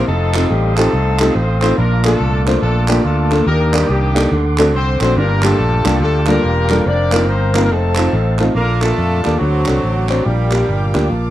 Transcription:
Already playing: C6
0.08 F1 A3 C4 D#4 A4 F5 D#6
0.34 A3 C4 D#4 F4 A4, clap
0.50 A1 G3 G4
0.76 A3 C4 D#4 F4 G4 A4, clap
0.93 C2
1.20 A3 C4 D#4 F4 G4, clap
1.34 A1 C4 C5
1.61 A3 C4 D#4 F4 C5, clap
1.77 A#1 A#2 A#3 D4 F4 A#4 A5 D6
2.04 A3 A#3 D4 F4 A4, clap
2.20 C2
2.46 A3 A#3 D4 F4 C5, clap
2.62 A#1 A3 D4 F4 A4
2.88 G3 A3 A#3 D4 F4 G4 A4, clap
3.05 D2 A3 D4 F4 A4
3.31 A3 A#3 D4 F4 A4, clap
3.47 D#2 D#3 A#3 D4 G4 A#4 G5 D6 D#6
3.73 G3 A#3 D4 D#4 G4 A#4, clap
3.89 C2 G3 A#3 D4 G4
4.15 A#3 D4 D#4 G4 A4, clap
4.31 D2 D3 A4 F#5 C6
4.58 A3 C4 D4 F#4 A4, clap
4.73 C2 C4 C5
5.01 A#1 A3 C4 D4 F#4 C5, clap
5.16 G1 G2 A#3 D4 F4 G4 A#4 F5 G5
5.43 G3 A3 A#3 D4 F4 G4 A4, clap
5.59 A#1
5.84 C2 G3 A#3 D4 F4 G4, clap
6.00 D2 A3 D4 F4 A4
6.27 G3 A#3 D4 F4 A4 A#4, clap
6.44 E1
6.70 G3 A#3 D4 F4 A4, clap
6.86 F1 D4 A#4 C5 D5
7.12 A#3 C4 D#4 F4 A#4, clap
7.28 G1 C4 D#4 C5
7.54 A#3 C4 D#4 F4 A#4, clap
7.64 A#3 A#4
7.70 F1 A3 C4 D#4 A4 C5 A5
7.96 A3 C4 D#4 F4 A4, clap
8.13 A1
8.39 A3 C4 D#4 F4 A4, clap
8.55 A#1 A#2 A#3 D4 F4 A4 A#4 F5 A5 D6
8.81 A3 A#3 D4 F4 A4, clap
8.98 F2
9.23 D#2 G3 A#3 D4 F4 A4, clap
9.38 D2 D3 F#3 A3 C4 F#4 C5 F#5 A5 C6 D6
9.65 C2 C4 D4 F#4 A4, clap
9.83 A1
10.08 F#3 C4 D4 F#4 C5, clap
10.23 A#1 A#2 G3 D4 G4 A#4 F5 G5 A#5 D6
10.52 A#3 D4 F4 G4, clap
10.69 G1
10.94 D2 A#3 D4 F4 G4, clap
11.10 A#1 A#2 A5

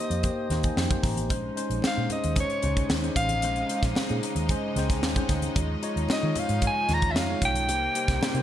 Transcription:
Already playing: A#3 D#4 G4 C5 D#5
0.10 F2 F5, closed hi-hat
0.23 A#3 D#4 G4 C5 G5, kick, closed hi-hat, muted conga
0.50 D#2 A#3 D#4 G4 C5, snare, closed hi-hat, muted conga, low conga
0.63 G#5, kick, closed hi-hat
0.76 F2 G5, snare, high conga
0.90 A#3 D#4 G4 C5, kick, closed hi-hat, high conga
1.03 A1 A#5, kick, snare, open hi-hat
1.16 closed hi-hat, high conga
1.29 A#1 C3 C#3 G#3 C#4 D#4 C5, kick, closed hi-hat, muted conga
1.56 G#3 C#4 D#4 C5, closed hi-hat
1.70 A#1, closed hi-hat
1.82 muted fingered electric bass stroke, snare, high conga
1.87 F5
1.95 A#2 G#3 C#4 D#4 C5
2.09 D#5, closed hi-hat, low conga
2.24 D#2, closed hi-hat
2.35 G#3 C#4 D#4 C#5, kick, closed hi-hat, muted conga
2.40 C#5
2.50 closed hi-hat
2.62 C#2 G#3 C#4 D#4 C5, closed hi-hat, muted conga, low conga
2.77 kick, closed hi-hat
2.89 D#2, snare, high conga
3.03 G#3 C#4 D#4 C5, closed hi-hat
3.16 A1 F5, kick, closed hi-hat
3.28 closed hi-hat, high conga
3.42 A#1 G#3 C#4 D#4 C5, closed hi-hat, muted conga
3.56 closed hi-hat
3.69 G#3 C#4 D#4 C5, closed hi-hat
3.83 A#1, kick, snare, closed hi-hat
3.95 snare, high conga
4.09 A#2 G#3 C#4 D#4 G#4, closed hi-hat
4.23 A#5, closed hi-hat
4.35 D#2, closed hi-hat
4.49 G#3 C#4 D#4 C5 G#5, kick, closed hi-hat, muted conga
4.76 C#2 G#3 C#4 D#4 C5 G5, snare, closed hi-hat, muted conga, low conga
4.90 kick, snare, closed hi-hat
5.02 D#2 F5, snare, high conga
5.16 G#3 C#4 D#4 C5, kick, closed hi-hat
5.29 D2, kick, snare, closed hi-hat
5.42 closed hi-hat, high conga
5.55 D#2 F3 G#3 D#4 F4 C#5, kick, closed hi-hat, muted conga
5.82 G#3 D#4 F4 C#5, closed hi-hat
5.96 D#2, closed hi-hat
6.09 D#5, snare, high conga
6.23 D#3 G#3 D#4 F4 C#5
6.35 closed hi-hat, muted conga, low conga
6.40 F5
6.49 G#2, closed hi-hat
6.62 G#3 D#4 F4 C#5, kick, closed hi-hat, muted conga
6.67 G#5
6.89 D#2 G#3 D#4 F4 C#5, snare, closed hi-hat, muted conga, low conga
6.94 A#5
7.02 kick, closed hi-hat
7.11 E5, high conga
7.15 F2 F5, snare
7.29 G#3 D#4 F4 C#5
7.42 B1 G5, kick, closed hi-hat
7.54 closed hi-hat, high conga
7.67 C2 C3 G3 A#3 D#4 G4 C5, closed hi-hat, muted conga
7.95 A#3 D#4 G4 C5, closed hi-hat
8.08 C2, kick, snare, closed hi-hat
8.21 snare, high conga
8.34 C3 A#3 D#4 G4 C5, closed hi-hat

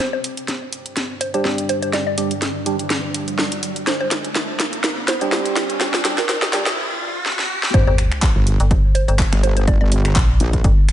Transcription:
0.00 G3 D4 D5, snare, closed hi-hat, riser
0.13 C5
0.24 open hi-hat
0.37 closed hi-hat
0.48 snare, closed hi-hat
0.73 open hi-hat
0.86 closed hi-hat
0.97 snare, closed hi-hat
1.21 C5, open hi-hat
1.34 G3 D4 G4 C5, closed hi-hat
1.45 snare
1.58 closed hi-hat
1.69 C5, open hi-hat
1.82 C5, closed hi-hat
1.93 D5, snare, closed hi-hat
2.07 D5
2.18 G3 D4 G4, open hi-hat
2.31 closed hi-hat
2.42 snare, closed hi-hat
2.66 G3 D4 G4, open hi-hat
2.79 closed hi-hat
2.90 snare, closed hi-hat
3.14 open hi-hat
3.28 closed hi-hat
3.39 snare
3.52 closed hi-hat
3.63 open hi-hat
3.76 closed hi-hat
3.87 C5, snare, closed hi-hat
4.00 C5
4.11 snare, open hi-hat
4.25 closed hi-hat
4.35 snare, closed hi-hat
4.60 snare, open hi-hat
4.73 closed hi-hat
4.84 snare, closed hi-hat
5.08 C5, snare, open hi-hat
5.21 G3 D4 G4 C5, closed hi-hat
5.32 snare
5.46 closed hi-hat
5.56 snare, open hi-hat
5.70 closed hi-hat
5.81 snare, closed hi-hat
5.94 snare
6.05 G3 D4 G4, snare, open hi-hat
6.18 A#4, snare, closed hi-hat
6.29 A#4, snare, closed hi-hat
6.42 snare
6.53 G3 D4 G4, snare, open hi-hat
6.66 snare, closed hi-hat
7.26 snare
7.39 snare
7.63 snare
7.74 G1 G3 D4 C5 D5, kick, closed hi-hat, sub drop
7.87 G1 C5
7.98 finger snap, open hi-hat
8.12 finger snap, closed hi-hat
8.22 kick, clap, closed hi-hat
8.36 G1
8.47 open hi-hat
8.60 G1, closed hi-hat
8.71 kick, closed hi-hat
8.95 C5, open hi-hat
9.08 G1 C5, closed hi-hat
9.19 kick, clap
9.33 G1, finger snap, closed hi-hat
9.43 C5, open hi-hat
9.57 C5, closed hi-hat
9.67 D5, kick, closed hi-hat
9.81 G1 D5
9.92 open hi-hat
10.05 finger snap, closed hi-hat
10.16 A#1, kick, clap, closed hi-hat
10.40 A#1, open hi-hat
10.53 kick, closed hi-hat
10.64 G1, kick, closed hi-hat
10.89 finger snap, open hi-hat

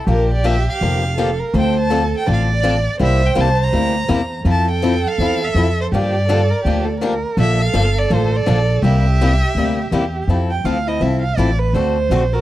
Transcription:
0.07 A#1 D3 F3 A#3 D4 G4 A#4
0.34 D5
0.44 D3 F3 A#3 D4 G4 E5
0.70 F5
0.81 F1 D3 F3 A#3 D4 G4
1.17 D3 F3 A#3 D4 G4 A4
1.40 A#4
1.54 D2 D3 F3 C4 D4 A4 C5
1.59 G5
1.80 A5
1.90 D3 F3 C4 D4 A4
2.17 G5
2.26 A1 D3 F3 C4 D4 A4 D5
2.33 F5
2.55 D5
2.63 D3 F3 C4 D4 A4
2.99 C2 C3 G3 A#3 E4 G4 C5
3.04 E5
3.27 G5
3.35 C2 C3 G3 A#3 E4 G4
3.41 A5
3.64 A#5
3.73 D2 C3 G3 A#3 E4 G4
4.08 E2 C3 G3 A#3 E4 G4
4.45 F2 F3 C4 E4 A4
4.51 A5
4.71 G5
4.82 F3 C4 E4 A4
5.08 F5
5.18 E2 F3 C4 E4 A4
5.44 E5
5.55 F2 F3 C4 E4 A4
5.81 C5
5.92 G2 D3 F3 A#3 D4 G4 D5
6.28 D3 F3 A#3 D4 G4 A4
6.50 A#4
6.65 D2 D3 F3 A#3 D4 G4
6.86 A4
7.00 D3 F3 A#3 D4 G4 A#4
7.37 A#1 D3 F3 A#3 D4 A4 E5
7.62 F5
7.73 G1 D3 F3 A#3 D4 A4
7.99 D5
8.10 A1 D3 F3 A#3 D4 A4
8.14 C5
8.37 D5
8.46 A#1 D3 F3 A#3 D4 A4
8.82 C2 C3 G3 A#3 E4 G4 E5
9.21 C3 G3 A#3 E4 G4
9.55 D2 C3 G3 A#3 E4 G4
9.91 E2 C3 G3 A#3 E4 G4
10.28 F2 F3 C4 E4 A4
10.51 G5
10.64 D2 F3 C4 E4 A4 F5
10.87 C4 E4 A4 D#5
11.00 C2 F3 C4 E4 A4 E5
11.22 F5
11.37 A1 F3 C4 E4 A4 D5
11.59 B4
11.73 D2 D3 A3 C4 F#4 A4 C5
12.10 A#1 D3 A3 C4 F#4 A4
12.33 C4 F#4 A4 A#4

